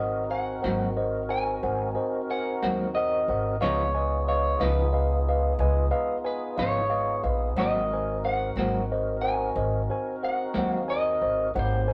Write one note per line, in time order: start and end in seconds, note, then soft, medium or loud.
0.00 0.59 G#1 medium
0.00 3.57 C4 medium
0.00 3.57 D#4 medium
0.00 3.57 F#4 medium
0.00 0.23 A#4 soft
0.00 3.56 A#4 medium
0.00 0.23 C5 soft
0.00 0.30 D#5 medium
0.00 0.23 F#5 soft
0.30 0.55 A#4 soft
0.30 0.55 C5 soft
0.30 1.30 F#5 medium
0.30 0.56 G#5 soft
0.62 1.59 G#1 medium
0.62 0.84 G#2 soft
0.62 0.84 F#3 soft
0.62 0.84 A#3 soft
0.62 0.84 C4 medium
0.62 0.88 A#4 soft
0.62 0.88 C5 soft
0.62 0.88 F#5 soft
0.97 1.22 A#4 soft
0.97 1.22 C5 soft
0.97 1.22 D#5 medium
1.29 1.54 A#4 soft
1.29 1.54 C5 soft
1.29 1.54 G#5 medium
1.29 2.30 G#5 medium
1.63 1.93 G#1 medium
1.63 1.88 A#4 soft
1.63 1.88 C5 soft
1.63 1.88 F#5 soft
1.95 2.20 A#4 soft
1.95 2.21 C5 soft
1.95 2.20 D#5 medium
2.30 2.54 A#4 soft
2.30 2.55 C5 soft
2.30 2.94 F#5 medium
2.30 2.55 G#5 soft
2.63 3.24 D#2 medium
2.63 2.83 G#2 soft
2.63 2.83 F#3 medium
2.63 2.83 A#3 soft
2.63 2.82 C4 medium
2.63 2.87 A#4 soft
2.63 2.87 C5 soft
2.63 2.87 F#5 medium
2.95 3.20 A#4 soft
2.95 3.20 C5 soft
2.95 3.57 D#5 medium
2.95 3.20 F#5 soft
3.28 3.58 G#1 medium
3.28 3.53 A#4 soft
3.28 3.53 C5 soft
3.28 3.54 F#5 soft
3.61 4.56 C#2 medium
3.61 3.81 C#3 medium
3.61 3.82 F3 medium
3.61 7.55 B3 medium
3.61 3.82 B3 medium
3.61 7.54 D#4 medium
3.61 3.82 D#4 medium
3.61 7.54 F4 medium
3.61 7.54 G#4 medium
3.61 3.86 B4 medium
3.61 4.27 C#5 medium
3.61 3.86 D#5 medium
3.61 3.86 F5 medium
3.95 4.19 B4 soft
3.95 4.19 D#5 soft
3.95 4.19 G#5 medium
4.27 4.52 B4 soft
4.27 4.62 C#5 medium
4.27 4.52 D#5 soft
4.27 4.52 F5 soft
4.59 5.55 C#2 medium
4.59 4.81 F3 soft
4.59 4.81 B3 medium
4.59 4.80 D#4 medium
4.59 4.84 B4 soft
4.59 6.25 B4 medium
4.59 4.85 D#5 soft
4.59 4.85 F5 medium
4.63 4.81 C#3 soft
4.93 5.18 B4 soft
4.93 5.18 D#5 soft
4.93 5.18 F5 medium
5.28 5.52 B4 soft
5.28 5.52 D#5 soft
5.28 5.52 F5 medium
5.59 5.89 C#2 medium
5.59 5.85 B4 medium
5.59 5.84 D#5 medium
5.59 5.84 G#5 medium
5.91 6.16 B4 medium
5.91 6.16 D#5 medium
5.91 6.16 F5 medium
6.24 6.50 B4 soft
6.24 6.60 B4 medium
6.24 6.50 D#5 soft
6.24 6.50 G#5 medium
6.57 7.20 G#1 medium
6.57 6.78 F3 soft
6.57 6.78 B3 medium
6.57 6.78 D#4 medium
6.57 6.82 B4 soft
6.57 7.30 C#5 medium
6.57 6.82 D#5 soft
6.57 6.82 F5 soft
6.61 6.79 C#3 soft
6.90 7.15 B4 soft
6.90 7.15 D#5 soft
6.90 7.15 F5 medium
7.23 7.54 A#1 medium
7.23 7.49 B4 soft
7.23 7.49 D#5 soft
7.23 7.49 F5 medium
7.30 7.58 B4 medium
7.56 8.52 G#1 medium
7.56 7.77 G#2 medium
7.56 7.78 F#3 medium
7.56 7.78 A#3 medium
7.56 11.51 C4 medium
7.56 7.78 C4 medium
7.56 11.51 D#4 medium
7.56 11.51 F#4 medium
7.56 11.51 A#4 medium
7.56 7.82 A#4 medium
7.56 7.82 C5 medium
7.56 8.24 D#5 medium
7.56 7.82 F#5 medium
7.93 8.16 A#4 soft
7.93 8.16 C5 soft
7.93 8.17 G#5 medium
8.25 8.49 A#4 soft
8.25 8.49 C5 soft
8.25 9.19 F#5 medium
8.25 8.49 F#5 medium
8.56 9.51 G#1 medium
8.56 8.78 G#2 soft
8.56 8.77 F#3 soft
8.56 8.77 A#3 medium
8.56 8.77 C4 medium
8.56 8.83 A#4 soft
8.56 8.83 C5 soft
8.60 8.83 F#5 medium
8.92 9.16 A#4 soft
8.92 9.16 C5 soft
8.92 9.16 D#5 medium
9.21 9.48 A#4 medium
9.21 9.48 C5 soft
9.21 9.48 F#5 medium
9.21 10.24 G#5 medium
9.55 9.86 G#1 medium
9.55 9.81 A#4 soft
9.55 9.81 C5 soft
9.55 9.81 D#5 medium
9.90 10.14 A#4 medium
9.90 10.14 C5 soft
9.90 10.15 G#5 medium
10.23 10.47 A#4 soft
10.23 10.47 C5 soft
10.23 10.48 F#5 soft
10.23 10.72 F#5 medium
10.54 11.18 D#2 medium
10.54 10.75 G#2 soft
10.54 10.75 F#3 soft
10.54 10.75 A#3 medium
10.54 10.75 C4 medium
10.54 10.81 A#4 soft
10.54 10.81 C5 soft
10.54 10.81 F#5 soft
10.72 10.90 F5 medium
10.88 11.13 A#4 soft
10.88 11.14 C5 soft
10.88 11.51 D#5 medium
10.88 11.13 G#5 soft
11.21 11.52 G#1 medium
11.21 11.46 A#4 soft
11.21 11.47 C5 soft
11.21 11.47 D#5 medium
11.54 11.93 G#1 medium
11.54 11.88 A#3 soft
11.54 11.88 C#4 medium
11.54 11.88 E4 medium
11.54 11.88 G4 medium
11.54 11.80 A#4 medium
11.54 11.80 C5 soft
11.54 11.80 F#5 medium
11.59 11.93 C5 medium
11.88 11.93 A#4 soft
11.88 11.93 C5 soft
11.88 11.93 G#5 medium